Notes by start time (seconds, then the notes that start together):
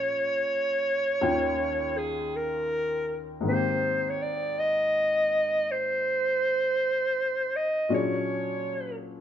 Already playing: A#2 F3 A#3 C#4 G#4 C#5
1.21 D#2 D#3 C#4 F4 G5
1.98 G#4
2.36 A#4
3.41 G#2 D#3
3.46 A#3 C4 C5
3.52 G4
4.10 C#5
4.22 D5
4.59 D#5
5.71 C5
7.56 D#5
7.89 A#2 F#3 C#4 D4 G#4
7.94 C#5